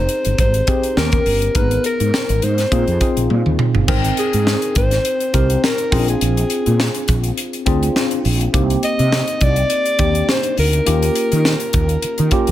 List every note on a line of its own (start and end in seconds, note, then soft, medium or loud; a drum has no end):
0.00 0.67 C4 medium
0.00 0.68 D#4 medium
0.00 0.68 G4 medium
0.00 0.68 G#4 loud
0.00 0.39 C5 loud
0.00 0.99 A#5 medium
0.09 closed hi-hat medium
0.25 0.35 G1 medium
0.25 closed hi-hat soft
0.38 0.60 G#1 medium
0.38 0.94 C5 loud
0.38 kick medium
0.38 closed hi-hat medium
0.54 closed hi-hat soft
0.67 0.97 C4 medium
0.67 0.97 D#4 medium
0.67 0.96 G4 medium
0.67 0.97 G#4 medium
0.67 kick medium
0.67 closed hi-hat medium
0.83 closed hi-hat soft
0.97 1.18 D#2 medium
0.97 1.47 B3 medium
0.97 1.47 C#4 medium
0.97 1.47 G4 medium
0.97 1.48 A#4 medium
0.97 1.58 A#4 medium
0.97 snare medium
1.12 kick medium
1.12 closed hi-hat soft
1.26 1.47 G1 medium
1.26 open hi-hat medium
1.42 closed hi-hat soft
1.55 1.76 G#1 medium
1.55 1.62 A#3 soft
1.55 2.55 D#4 medium
1.55 2.55 G#4 medium
1.55 2.55 A#4 medium
1.55 1.85 B4 medium
1.55 kick medium
1.55 closed hi-hat medium
1.61 2.58 B3 medium
1.71 closed hi-hat soft
1.84 2.45 A#4 medium
1.84 closed hi-hat medium
2.00 2.10 G#2 medium
2.00 closed hi-hat soft
2.14 snare loud
2.29 2.39 G#1 medium
2.29 closed hi-hat soft
2.42 2.64 G#2 medium
2.42 3.31 C5 medium
2.42 closed hi-hat medium
2.58 snare soft
2.58 closed hi-hat soft
2.71 2.83 A#2 loud
2.71 2.97 C4 medium
2.71 2.97 D#4 medium
2.71 2.97 F4 medium
2.71 2.97 G#4 medium
2.71 kick medium
2.71 closed hi-hat medium
2.87 2.97 F2 medium
2.87 closed hi-hat soft
3.00 3.76 C4 medium
3.00 3.76 D#4 medium
3.00 3.76 F4 medium
3.00 3.76 G#4 medium
3.00 kick medium
3.00 closed hi-hat medium
3.17 3.26 A#1 medium
3.17 closed hi-hat medium
3.30 3.41 A#2 medium
3.30 high tom soft
3.46 3.56 D#2 medium
3.46 mid tom medium
3.59 mid tom medium
3.75 3.85 G1 medium
3.75 floor tom medium
3.88 4.10 G#1 medium
3.88 4.88 C4 medium
3.88 4.88 D#4 medium
3.88 4.88 A#4 medium
3.88 4.88 G5 medium
3.88 kick loud
3.88 crash medium
4.04 closed hi-hat medium
4.17 4.72 G#4 medium
4.17 closed hi-hat medium
4.33 4.55 G#2 medium
4.33 closed hi-hat soft
4.47 snare loud
4.62 closed hi-hat soft
4.75 4.97 G#1 medium
4.75 5.60 C5 loud
4.75 kick medium
4.75 closed hi-hat medium
4.91 snare soft
4.91 closed hi-hat soft
5.05 closed hi-hat medium
5.20 closed hi-hat soft
5.33 5.55 C2 medium
5.33 5.90 C4 medium
5.33 5.92 D#4 medium
5.33 5.92 G4 medium
5.33 5.92 A#4 medium
5.33 kick medium
5.33 closed hi-hat medium
5.50 closed hi-hat soft
5.64 6.05 A#4 medium
5.64 snare loud
5.78 closed hi-hat soft
5.91 6.13 A#1 medium
5.91 6.91 C4 medium
5.91 5.99 C#4 medium
5.91 6.92 F4 medium
5.91 6.92 G#4 medium
5.91 kick loud
5.91 open hi-hat medium
5.98 6.95 D4 medium
6.08 7.21 G#4 medium
6.08 closed hi-hat medium
6.21 6.43 A#1 medium
6.21 closed hi-hat medium
6.37 closed hi-hat medium
6.50 closed hi-hat medium
6.66 6.88 A#2 medium
6.66 closed hi-hat soft
6.80 snare loud
6.95 closed hi-hat soft
7.08 7.30 A#1 medium
7.08 kick medium
7.08 closed hi-hat medium
7.24 closed hi-hat soft
7.38 closed hi-hat medium
7.53 closed hi-hat soft
7.66 7.88 D2 medium
7.66 8.41 C4 medium
7.66 8.42 D4 medium
7.66 8.42 F4 medium
7.66 8.42 G#4 medium
7.66 kick medium
7.66 closed hi-hat medium
7.83 closed hi-hat medium
7.96 snare medium
8.11 closed hi-hat soft
8.25 8.46 A#1 medium
8.25 open hi-hat medium
8.41 closed hi-hat soft
8.53 8.75 C2 loud
8.53 9.53 A#3 medium
8.53 9.53 C4 medium
8.53 9.53 D#4 medium
8.53 9.54 G4 medium
8.53 kick loud
8.53 closed hi-hat medium
8.70 closed hi-hat medium
8.83 9.45 D#5 loud
8.83 closed hi-hat medium
8.99 9.20 C3 medium
8.99 closed hi-hat soft
9.12 snare loud
9.27 closed hi-hat soft
9.41 9.63 C2 medium
9.41 10.29 D5 loud
9.41 kick medium
9.41 closed hi-hat medium
9.56 closed hi-hat soft
9.70 closed hi-hat medium
9.86 closed hi-hat soft
9.98 10.21 D#2 medium
9.98 10.74 A#3 medium
9.98 10.74 D4 medium
9.98 10.74 D#4 medium
9.98 10.74 G4 medium
9.98 kick medium
9.98 closed hi-hat medium
10.15 closed hi-hat medium
10.29 10.57 C5 medium
10.29 snare medium
10.43 closed hi-hat soft
10.57 10.79 D2 medium
10.57 12.51 A#4 medium
10.57 open hi-hat medium
10.73 closed hi-hat medium
10.86 11.08 D#2 loud
10.86 11.86 A#3 medium
10.86 11.86 C#4 medium
10.86 11.86 F4 medium
10.86 11.86 G4 medium
10.86 closed hi-hat loud
11.02 closed hi-hat medium
11.15 closed hi-hat medium
11.32 11.53 D#3 medium
11.32 closed hi-hat soft
11.45 snare loud
11.60 closed hi-hat soft
11.73 11.95 D#2 medium
11.73 kick medium
11.73 closed hi-hat medium
11.89 closed hi-hat soft
12.02 muted fretless electric bass stroke soft
12.02 closed hi-hat medium
12.18 12.29 D#3 medium
12.18 closed hi-hat soft
12.31 12.51 A#3 medium
12.31 12.51 C#4 medium
12.31 12.51 F4 medium
12.31 12.51 G4 medium
12.31 kick medium
12.31 closed hi-hat medium
12.47 12.51 D#2 medium
12.47 closed hi-hat medium